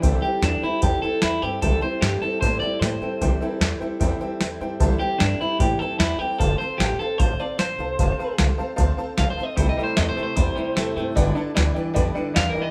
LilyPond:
<<
  \new Staff \with { instrumentName = "Honky-tonk piano" } { \time 4/4 \key c \major \tempo 4 = 151 <c'' e'' g''>8 <c'' e'' g''>8 <c'' e'' g''>8 <c'' e'' g''>8 <c'' e'' a''>8 <c'' e'' g''>8 <c'' e'' g''>8 <c'' e'' g''>8 | <c'' e'' g''>8 <c'' e'' g''>8 <c'' e''>8 <c'' e'' g''>8 <c'' e'' a''>8 <c'' e'' g''>8 <c'' e'' g''>8 <c'' e'' g''>8 | <c'' e'' g''>8 <c'' e'' g''>8 <c'' e'' g''>8 <c'' e'' g''>8 <c'' e'' g''>8 <c'' e'' g''>8 <c'' e'' g''>8 <c'' e'' g''>8 | <c'' e'' a''>8 <c'' e'' g''>8 <c'' e'' g''>8 <c'' e'' g''>8 <c'' e'' g''>8 <c'' e'' g''>8 <c'' e'' g''>8 <c'' e'' g''>8 |
<c'' f'' a''>8 <c'' f'' a''>8 <c'' f'' a''>8 <c'' f'' a''>8 <c'' f'' a''>8 <c'' f'' a''>8 <c'' f'' a''>8 <c'' f'' a''>8 | <c'' f'' a''>8 <c'' f'' a''>8 <c'' f'' a''>8 <c'' f'' a''>8 <c'' f'' a''>8 <c'' f'' a''>8 <c'' f'' a''>8 <c'' f'' a''>8 | <c'' e'' g''>8 <c'' e'' g''>8 <c'' e'' g''>8 <c'' e'' g''>8 <c'' e'' g''>8 <c'' e'' g''>8 <c'' e'' g''>8 <c'' e'' g''>8 | <b' d'' g''>8 <b' d'' a''>8 <b' d'' g''>8 <b' d'' g''>8 <b' d'' g''>8 <b' d'' g''>8 <b' d'' g''>8 <b' d'' g''>8 | }
  \new Staff \with { instrumentName = "Clean electric guitar" } { \time 4/4 \key c \major r8 g'8 d'8 e'8 g'8 a'8 e'8 g'8 | a'8 c''8 g'8 a'8 c''8 d''8 c''4~ | c''4 r2. | r8 g'8 d'8 e'8 g'8 a'8 e'8 g'8 |
a'8 c''8 g'8 a'8 c''8 d''8 c''4~ | c''4 r2 \tuplet 3/2 { f''8 c''8 ees''8 } | \tuplet 3/2 { c''8 ees''8 c''8 ees''8 c''8 c''8~ } c''2 | r2. \tuplet 3/2 { f''8 bes'8 ees''8 } | }
  \new Staff \with { instrumentName = "Steel-string acoustic guitar" } { \time 4/4 \key c \major <c e g c' e' a'>8 <g c' e' a'>8 <g c' e' a'>8 <g c' e' a'>8 <c e g c' e' a'>8 <g c' e' a'>8 <g c' a'>8 <g c' e' a'>8 | <c e g c' e' a'>8 <g c' e' a'>8 <g c' e' a'>8 <g c' e' a'>8 <c e g c' e' a'>8 <g c' e' a'>8 <g c' e' a'>8 <g c' e' a'>8 | <c e g c' e' a'>8 <g c' e' a'>8 <g c' e' a'>8 <g c' e' a'>8 <c e g c' e' a'>8 <g c' e' a'>8 <g c' e' a'>8 <g c' e' a'>8 | <c e g c' e' a'>8 <g c' e' a'>8 <g c' e' a'>8 <g c' e' a'>8 <c e g c' e' a'>8 <g c' e' a'>8 <g e' a'>8 <g c' e' a'>8 |
<d f c' f' a' c''>8 <c' f' a' c''>8 <c' f'>8 <c' f' a' c''>8 <d f c' f' a' c''>8 <c' f' a' c''>8 <c' f' a' c''>8 <c' f' a' c''>8 | <d f c' f' a' c''>8 <c' f' a' c''>8 <c' f' a' c''>8 <c' f' a' c''>8 <d f c' f' a' c''>8 <c' f' a' c''>8 <c' f' a' c''>8 <c' f' a' c''>8 | <c g a c' e' a'>8 <a c' e' a'>8 <a c' e' a'>8 <a c' e' a'>8 <c g a c' e' a'>8 <a c' e' a'>8 <a c' e' a'>8 <a c' e' a'>8 | <g b d' e' b'>8 <d' e' b'>8 <b d' e' b'>8 <d' e' b'>8 <g b d' e' b'>8 <d' e' b'>8 <b d' e' b'>8 <d' e' b'>8 | }
  \new Staff \with { instrumentName = "Clean electric guitar" } { \clef bass \time 4/4 \key c \major r1 | r1 | r1 | r1 |
r1 | r1 | <c g>8 <c g>8 <c a>8 <c a>8 <c g>8 <c g>8 <c a>8 <c a>8 | <g, d>8 <g, d>8 <g, e>8 <g, e>8 <g, d>8 <g, d>8 <g, e>8 <g, e>8 | }
  \new Staff \with { instrumentName = "Upright bass" } { \clef bass \time 4/4 \key c \major c,8 r8 e,8 r8 e,8 r8 e,8 g,8 | c,8 r8 g,8 r8 a,8 r8 a,8 r8 | c,8 r8 e,8 r8 e,8 r8 e,8 g,8 | c,8 r8 g,8 r8 a,8 r8 e,8 r8 |
f,,8 r8 a,,8 r8 a,,8 r8 a,,8 c,8 | f,,8 r8 c,8 r8 d,8 r8 b,,8 r8 | c,8 r8 e,8 r8 e,8 r8 e,8 g,8 | g,,8 r8 d,8 r8 f,8 r8 e,8 r8 | }
  \new DrumStaff \with { instrumentName = "Drums" } \drummode { \time 4/4 <hho bd>4 <hho sn>4 <hho bd>4 <hho sn>4 | <hho bd>4 <hho sn>4 <hho bd>4 <hho sn>4 | <hho bd>4 <hho sn>4 <hho bd>4 <hho sn>4 | <hho bd>4 <hho sn>4 <hho bd>4 <hho sn>4 |
<hho bd>4 <hho sn>4 <hho bd>4 <hho sn>4 | <hho bd>4 <hho sn>4 <hho bd>4 <hho sn>4 | <hho bd>4 <hho sn>4 <hho bd>4 <hho sn>4 | <hho bd>4 <hho sn>4 <hho bd>4 <hho sn>4 | }
>>